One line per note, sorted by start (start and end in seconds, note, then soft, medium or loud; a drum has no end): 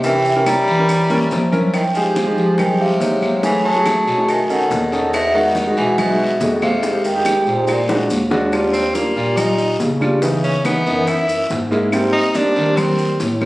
0.00 0.61 C3 loud
0.00 0.43 E3 medium
0.00 high bongo medium
0.00 maracas medium
0.04 0.26 C#4 medium
0.04 0.26 E4 medium
0.04 0.26 A#4 medium
0.04 0.48 G5 loud
0.04 high conga soft
0.04 long guiro medium
0.25 high bongo soft
0.25 high conga soft
0.25 maracas medium
0.36 0.65 C#4 medium
0.36 0.65 E4 medium
0.36 0.66 A#4 medium
0.46 1.49 G3 loud
0.46 1.49 A#5 medium
0.46 high bongo medium
0.46 high conga medium
0.46 short guiro medium
0.46 claves medium
0.46 maracas medium
0.67 1.27 E3 medium
0.67 high bongo soft
0.67 high conga soft
0.67 short guiro medium
0.67 maracas soft
0.78 1.00 C#4 medium
0.78 1.01 E4 medium
0.78 1.01 A#4 medium
0.89 high bongo medium
0.89 high conga soft
0.89 long guiro medium
0.89 claves medium
0.89 maracas medium
1.10 1.40 C#4 medium
1.10 1.40 E4 medium
1.10 1.40 A#4 loud
1.10 high bongo soft
1.10 high conga loud
1.10 maracas medium
1.31 2.04 F3 loud
1.31 high bongo soft
1.31 low bongo medium
1.31 high conga loud
1.31 short guiro medium
1.31 maracas medium
1.52 1.73 C#4 loud
1.52 1.74 E4 medium
1.52 1.74 A#4 loud
1.52 low conga loud
1.52 short guiro medium
1.52 maracas soft
1.73 1.84 D#3 medium
1.73 1.84 G5 loud
1.73 high bongo medium
1.73 high conga soft
1.73 long guiro medium
1.73 claves medium
1.73 maracas medium
1.95 2.55 F3 medium
1.95 2.17 G#3 medium
1.95 2.17 D#4 medium
1.95 2.17 G4 medium
1.95 2.61 G#5 medium
1.95 high bongo soft
1.95 high conga soft
1.95 maracas medium
2.16 high bongo medium
2.16 high conga loud
2.16 short guiro medium
2.16 maracas medium
2.26 2.56 G#3 medium
2.26 2.56 D#4 medium
2.26 2.57 G4 medium
2.37 2.97 F3 medium
2.37 high bongo soft
2.37 high conga soft
2.37 short guiro medium
2.37 maracas soft
2.58 2.78 D#3 medium
2.58 2.79 G5 medium
2.58 high bongo medium
2.58 high conga soft
2.58 low conga medium
2.58 long guiro medium
2.58 claves medium
2.58 maracas medium
2.69 2.91 G#3 medium
2.69 2.91 D#4 medium
2.69 2.91 G4 medium
2.79 3.40 C3 medium
2.79 3.40 F5 medium
2.79 high bongo soft
2.79 high conga soft
3.00 4.01 F#3 medium
3.00 3.31 G#3 medium
3.00 3.31 D#4 medium
3.00 3.31 G4 medium
3.00 high bongo soft
3.00 low bongo medium
3.00 high conga medium
3.00 short guiro medium
3.00 maracas medium
3.22 high conga medium
3.22 short guiro medium
3.22 claves medium
3.22 maracas soft
3.43 3.64 E3 medium
3.43 3.65 A3 medium
3.43 3.66 E4 medium
3.43 3.66 G#4 medium
3.43 3.66 G#5 loud
3.43 high bongo medium
3.43 high conga soft
3.43 long guiro medium
3.43 maracas medium
3.64 4.24 F#3 medium
3.64 4.30 A5 loud
3.64 high bongo soft
3.64 high conga soft
3.74 4.05 A3 medium
3.74 4.05 E4 medium
3.74 4.05 G#4 medium
3.86 high bongo medium
3.86 high conga loud
3.86 short guiro medium
3.86 claves medium
3.86 maracas medium
4.07 4.67 B2 loud
4.07 high bongo soft
4.07 high conga soft
4.07 short guiro medium
4.07 maracas soft
4.18 4.28 A3 medium
4.18 4.28 E4 medium
4.18 4.29 G#4 medium
4.28 4.49 D#3 medium
4.28 4.51 G#5 medium
4.28 high bongo medium
4.28 high conga soft
4.28 long guiro medium
4.28 claves medium
4.28 maracas medium
4.50 5.10 D#3 medium
4.50 4.79 C#4 medium
4.50 4.79 D#4 medium
4.50 4.80 A4 medium
4.50 5.10 F#5 medium
4.50 high bongo soft
4.50 high conga soft
4.50 maracas medium
4.71 5.71 E2 loud
4.71 high bongo soft
4.71 low bongo medium
4.71 high conga medium
4.71 short guiro medium
4.71 maracas medium
4.92 5.13 C#4 medium
4.92 5.13 D#4 medium
4.92 5.14 A4 medium
4.92 high conga soft
4.92 short guiro medium
4.92 maracas soft
5.13 5.33 B2 medium
5.13 5.36 E5 loud
5.13 high bongo medium
5.13 high conga soft
5.13 long guiro medium
5.13 claves medium
5.13 maracas medium
5.34 5.74 D#3 medium
5.34 5.56 G#3 medium
5.34 5.57 D#4 medium
5.34 5.57 F#4 medium
5.34 5.78 F#5 medium
5.34 high bongo soft
5.34 high conga soft
5.55 high bongo medium
5.55 high conga loud
5.55 short guiro medium
5.55 maracas medium
5.67 5.96 G#3 medium
5.67 5.96 D#4 medium
5.67 5.97 F#4 medium
5.77 6.37 B2 loud
5.77 5.97 E3 medium
5.77 5.99 G#5 medium
5.77 high bongo soft
5.77 high conga soft
5.77 short guiro medium
5.77 maracas soft
5.98 6.38 B2 medium
5.98 6.38 E5 medium
5.98 high bongo medium
5.98 high conga soft
5.98 low conga medium
5.98 long guiro medium
5.98 claves medium
5.98 maracas medium
6.10 6.32 G#3 medium
6.10 6.32 D#4 medium
6.10 6.32 F#4 medium
6.19 high bongo soft
6.19 high conga soft
6.40 7.14 F2 loud
6.40 6.70 G#3 medium
6.40 6.71 D#4 medium
6.40 6.71 F#4 medium
6.40 high bongo soft
6.40 low bongo medium
6.40 high conga medium
6.40 short guiro medium
6.40 maracas medium
6.62 7.02 C3 medium
6.62 7.06 F5 medium
6.62 high conga medium
6.62 short guiro medium
6.62 claves medium
6.62 maracas soft
6.83 7.05 G#3 medium
6.83 7.05 D#4 medium
6.83 7.06 G4 medium
6.83 high bongo medium
6.83 high conga soft
6.83 long guiro medium
6.83 maracas medium
7.04 7.44 D#3 medium
7.04 7.49 G5 loud
7.04 high bongo soft
7.04 high conga soft
7.04 maracas medium
7.15 7.45 G#3 medium
7.15 7.45 D#4 medium
7.15 7.45 G4 medium
7.25 high bongo medium
7.25 high conga medium
7.25 short guiro medium
7.25 claves medium
7.25 maracas medium
7.46 7.66 G#2 medium
7.46 8.07 A#2 medium
7.46 7.70 C5 medium
7.46 high bongo soft
7.46 high conga soft
7.46 short guiro medium
7.46 maracas soft
7.57 7.68 G#3 medium
7.57 7.68 D#4 medium
7.57 7.68 G4 medium
7.67 8.07 A#2 medium
7.67 8.08 D5 medium
7.67 high bongo medium
7.67 high conga soft
7.67 long guiro medium
7.67 claves medium
7.67 maracas medium
7.88 8.18 G#3 medium
7.88 8.19 D4 medium
7.88 8.19 F#4 medium
7.88 high bongo loud
7.88 high conga soft
7.88 maracas medium
8.10 9.10 D#2 medium
8.10 high conga medium
8.10 short guiro medium
8.10 maracas medium
8.30 8.52 G#3 medium
8.30 8.51 D4 medium
8.30 8.53 F#4 loud
8.30 low bongo medium
8.30 short guiro medium
8.30 maracas soft
8.52 8.82 G3 medium
8.52 8.83 D4 medium
8.52 8.83 F4 medium
8.52 high bongo medium
8.52 high conga soft
8.52 long guiro medium
8.52 claves medium
8.52 maracas medium
8.73 8.96 C4 medium
8.73 high bongo soft
8.73 high conga soft
8.73 maracas medium
8.94 9.10 G3 medium
8.94 9.38 A#3 medium
8.94 9.10 D4 medium
8.94 9.10 F4 medium
8.94 high bongo soft
8.94 high conga medium
8.94 short guiro medium
8.94 maracas medium
9.15 9.76 A#2 loud
9.15 9.75 G3 medium
9.15 9.76 F4 medium
9.15 9.76 D5 medium
9.15 high bongo soft
9.15 high conga soft
9.15 short guiro medium
9.15 maracas soft
9.37 9.80 D#4 loud
9.37 high bongo medium
9.37 high conga soft
9.37 low conga medium
9.37 long guiro medium
9.37 claves medium
9.37 maracas medium
9.58 high bongo soft
9.58 maracas medium
9.80 10.80 C#3 loud
9.80 high bongo soft
9.80 low bongo medium
9.80 high conga medium
9.80 short guiro medium
9.80 maracas medium
10.01 10.16 G3 medium
10.01 10.16 D4 medium
10.01 10.16 F4 medium
10.01 high conga medium
10.01 short guiro medium
10.01 claves medium
10.01 maracas soft
10.22 10.52 E3 medium
10.22 10.52 B3 medium
10.22 10.53 D#4 medium
10.22 high bongo medium
10.22 high conga soft
10.22 long guiro medium
10.22 maracas medium
10.44 10.66 C#4 medium
10.44 high bongo soft
10.44 high conga soft
10.44 maracas medium
10.65 10.80 E3 medium
10.65 11.09 B3 medium
10.65 10.80 B3 medium
10.65 10.80 D#4 medium
10.65 high bongo medium
10.65 high conga medium
10.65 short guiro medium
10.65 claves medium
10.65 maracas medium
10.86 11.26 F#2 loud
10.86 11.08 E3 medium
10.86 11.08 B3 medium
10.86 11.08 D#4 medium
10.86 high bongo soft
10.86 high conga soft
10.86 short guiro medium
10.86 maracas soft
11.07 11.50 E4 medium
11.07 high bongo medium
11.07 high conga soft
11.07 long guiro medium
11.07 claves medium
11.07 maracas medium
11.29 11.49 F#2 medium
11.29 high bongo soft
11.29 high conga soft
11.29 maracas medium
11.50 12.23 G#2 medium
11.50 high bongo soft
11.50 low bongo medium
11.50 high conga medium
11.50 short guiro medium
11.50 maracas medium
11.71 11.86 G#3 medium
11.71 11.86 A#3 medium
11.71 11.86 E4 medium
11.71 high conga soft
11.71 short guiro medium
11.71 maracas soft
11.92 12.22 G3 medium
11.92 12.22 A#3 medium
11.92 12.22 C4 loud
11.92 high bongo medium
11.92 high conga soft
11.92 long guiro medium
11.92 claves medium
11.92 maracas medium
12.13 12.37 D#4 medium
12.13 high bongo soft
12.13 high conga soft
12.34 12.49 G3 medium
12.34 12.50 A#3 medium
12.34 12.50 C4 medium
12.34 12.79 D4 loud
12.34 high bongo medium
12.34 high conga medium
12.34 short guiro medium
12.34 maracas medium
12.55 13.16 D#3 medium
12.55 13.15 G3 medium
12.55 13.15 A#3 medium
12.55 13.15 C4 medium
12.55 high bongo soft
12.55 high conga soft
12.55 short guiro medium
12.55 maracas soft
12.77 13.20 C4 medium
12.77 high bongo medium
12.77 high conga soft
12.77 low conga medium
12.77 long guiro medium
12.77 claves medium
12.77 maracas medium
12.98 high bongo soft
12.98 high conga soft
12.98 maracas medium
13.20 13.45 A2 loud
13.20 high bongo soft
13.20 low bongo medium
13.20 high conga medium
13.20 short guiro medium
13.20 maracas medium
13.41 13.45 G3 medium
13.41 13.45 A#3 medium
13.41 13.45 C4 medium
13.41 high conga medium
13.41 short guiro medium
13.41 claves medium
13.41 maracas soft